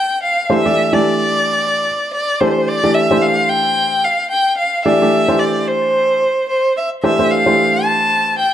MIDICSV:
0, 0, Header, 1, 3, 480
1, 0, Start_track
1, 0, Tempo, 544465
1, 442, Time_signature, 4, 2, 24, 8
1, 7526, End_track
2, 0, Start_track
2, 0, Title_t, "Violin"
2, 0, Program_c, 0, 40
2, 0, Note_on_c, 0, 79, 96
2, 201, Note_off_c, 0, 79, 0
2, 206, Note_on_c, 0, 77, 85
2, 391, Note_off_c, 0, 77, 0
2, 391, Note_on_c, 0, 77, 62
2, 460, Note_on_c, 0, 76, 90
2, 473, Note_off_c, 0, 77, 0
2, 824, Note_on_c, 0, 74, 89
2, 837, Note_off_c, 0, 76, 0
2, 1879, Note_off_c, 0, 74, 0
2, 1884, Note_on_c, 0, 74, 91
2, 2118, Note_on_c, 0, 72, 80
2, 2131, Note_off_c, 0, 74, 0
2, 2363, Note_on_c, 0, 74, 94
2, 2376, Note_off_c, 0, 72, 0
2, 2595, Note_on_c, 0, 76, 93
2, 2608, Note_off_c, 0, 74, 0
2, 2836, Note_on_c, 0, 77, 91
2, 2850, Note_off_c, 0, 76, 0
2, 3080, Note_on_c, 0, 79, 95
2, 3093, Note_off_c, 0, 77, 0
2, 3563, Note_on_c, 0, 77, 81
2, 3576, Note_off_c, 0, 79, 0
2, 3793, Note_off_c, 0, 77, 0
2, 3799, Note_on_c, 0, 79, 88
2, 4024, Note_off_c, 0, 79, 0
2, 4037, Note_on_c, 0, 77, 82
2, 4263, Note_off_c, 0, 77, 0
2, 4275, Note_on_c, 0, 76, 91
2, 4753, Note_on_c, 0, 74, 77
2, 4767, Note_off_c, 0, 76, 0
2, 5001, Note_on_c, 0, 72, 83
2, 5014, Note_off_c, 0, 74, 0
2, 5717, Note_off_c, 0, 72, 0
2, 5723, Note_on_c, 0, 72, 73
2, 5946, Note_off_c, 0, 72, 0
2, 5969, Note_on_c, 0, 76, 74
2, 6076, Note_off_c, 0, 76, 0
2, 6205, Note_on_c, 0, 76, 88
2, 6442, Note_on_c, 0, 77, 97
2, 6456, Note_off_c, 0, 76, 0
2, 6920, Note_on_c, 0, 81, 96
2, 6933, Note_off_c, 0, 77, 0
2, 7391, Note_off_c, 0, 81, 0
2, 7396, Note_on_c, 0, 79, 81
2, 7526, Note_off_c, 0, 79, 0
2, 7526, End_track
3, 0, Start_track
3, 0, Title_t, "Grand piano"
3, 0, Program_c, 1, 0
3, 437, Note_on_c, 1, 57, 60
3, 438, Note_on_c, 1, 52, 66
3, 438, Note_on_c, 1, 62, 60
3, 438, Note_on_c, 1, 72, 72
3, 440, Note_on_c, 1, 67, 60
3, 556, Note_off_c, 1, 52, 0
3, 556, Note_off_c, 1, 57, 0
3, 556, Note_off_c, 1, 62, 0
3, 556, Note_off_c, 1, 72, 0
3, 557, Note_off_c, 1, 67, 0
3, 576, Note_on_c, 1, 57, 61
3, 576, Note_on_c, 1, 67, 60
3, 578, Note_on_c, 1, 52, 62
3, 578, Note_on_c, 1, 62, 58
3, 578, Note_on_c, 1, 74, 71
3, 780, Note_off_c, 1, 57, 0
3, 780, Note_off_c, 1, 67, 0
3, 781, Note_off_c, 1, 62, 0
3, 782, Note_off_c, 1, 52, 0
3, 782, Note_off_c, 1, 74, 0
3, 816, Note_on_c, 1, 52, 70
3, 818, Note_on_c, 1, 62, 60
3, 819, Note_on_c, 1, 57, 62
3, 819, Note_on_c, 1, 67, 64
3, 821, Note_on_c, 1, 74, 73
3, 1635, Note_off_c, 1, 52, 0
3, 1636, Note_off_c, 1, 62, 0
3, 1637, Note_off_c, 1, 57, 0
3, 1637, Note_off_c, 1, 67, 0
3, 1638, Note_off_c, 1, 74, 0
3, 2122, Note_on_c, 1, 57, 64
3, 2123, Note_on_c, 1, 52, 67
3, 2123, Note_on_c, 1, 62, 63
3, 2124, Note_on_c, 1, 67, 60
3, 2126, Note_on_c, 1, 72, 76
3, 2442, Note_off_c, 1, 57, 0
3, 2443, Note_off_c, 1, 52, 0
3, 2443, Note_off_c, 1, 62, 0
3, 2444, Note_off_c, 1, 67, 0
3, 2445, Note_off_c, 1, 72, 0
3, 2499, Note_on_c, 1, 52, 65
3, 2499, Note_on_c, 1, 57, 61
3, 2500, Note_on_c, 1, 67, 63
3, 2501, Note_on_c, 1, 74, 74
3, 2503, Note_on_c, 1, 62, 59
3, 2702, Note_off_c, 1, 52, 0
3, 2702, Note_off_c, 1, 57, 0
3, 2703, Note_off_c, 1, 67, 0
3, 2703, Note_off_c, 1, 74, 0
3, 2704, Note_off_c, 1, 62, 0
3, 2738, Note_on_c, 1, 57, 65
3, 2739, Note_on_c, 1, 52, 69
3, 2739, Note_on_c, 1, 62, 67
3, 2739, Note_on_c, 1, 67, 61
3, 2741, Note_on_c, 1, 72, 76
3, 3557, Note_off_c, 1, 52, 0
3, 3557, Note_off_c, 1, 57, 0
3, 3557, Note_off_c, 1, 62, 0
3, 3557, Note_off_c, 1, 67, 0
3, 3558, Note_off_c, 1, 72, 0
3, 4280, Note_on_c, 1, 52, 71
3, 4281, Note_on_c, 1, 57, 62
3, 4281, Note_on_c, 1, 62, 63
3, 4283, Note_on_c, 1, 74, 76
3, 4284, Note_on_c, 1, 67, 61
3, 4397, Note_off_c, 1, 52, 0
3, 4398, Note_off_c, 1, 57, 0
3, 4398, Note_off_c, 1, 62, 0
3, 4399, Note_off_c, 1, 67, 0
3, 4399, Note_off_c, 1, 74, 0
3, 4421, Note_on_c, 1, 57, 58
3, 4423, Note_on_c, 1, 52, 66
3, 4425, Note_on_c, 1, 62, 62
3, 4427, Note_on_c, 1, 74, 73
3, 4428, Note_on_c, 1, 67, 61
3, 4623, Note_off_c, 1, 57, 0
3, 4624, Note_off_c, 1, 52, 0
3, 4625, Note_off_c, 1, 62, 0
3, 4626, Note_off_c, 1, 74, 0
3, 4627, Note_off_c, 1, 67, 0
3, 4657, Note_on_c, 1, 52, 70
3, 4657, Note_on_c, 1, 57, 63
3, 4658, Note_on_c, 1, 62, 64
3, 4659, Note_on_c, 1, 67, 62
3, 4659, Note_on_c, 1, 72, 73
3, 5476, Note_off_c, 1, 52, 0
3, 5477, Note_off_c, 1, 57, 0
3, 5477, Note_off_c, 1, 62, 0
3, 5477, Note_off_c, 1, 67, 0
3, 5478, Note_off_c, 1, 72, 0
3, 6201, Note_on_c, 1, 52, 64
3, 6202, Note_on_c, 1, 57, 59
3, 6202, Note_on_c, 1, 62, 63
3, 6204, Note_on_c, 1, 67, 59
3, 6207, Note_on_c, 1, 72, 74
3, 6319, Note_off_c, 1, 52, 0
3, 6319, Note_off_c, 1, 57, 0
3, 6319, Note_off_c, 1, 62, 0
3, 6320, Note_off_c, 1, 67, 0
3, 6322, Note_off_c, 1, 72, 0
3, 6338, Note_on_c, 1, 52, 64
3, 6338, Note_on_c, 1, 57, 60
3, 6339, Note_on_c, 1, 67, 59
3, 6340, Note_on_c, 1, 62, 59
3, 6340, Note_on_c, 1, 72, 72
3, 6542, Note_off_c, 1, 52, 0
3, 6542, Note_off_c, 1, 57, 0
3, 6543, Note_off_c, 1, 62, 0
3, 6543, Note_off_c, 1, 67, 0
3, 6543, Note_off_c, 1, 72, 0
3, 6578, Note_on_c, 1, 52, 67
3, 6578, Note_on_c, 1, 57, 64
3, 6578, Note_on_c, 1, 72, 75
3, 6580, Note_on_c, 1, 62, 61
3, 6581, Note_on_c, 1, 67, 61
3, 7398, Note_off_c, 1, 52, 0
3, 7398, Note_off_c, 1, 57, 0
3, 7398, Note_off_c, 1, 72, 0
3, 7399, Note_off_c, 1, 62, 0
3, 7399, Note_off_c, 1, 67, 0
3, 7526, End_track
0, 0, End_of_file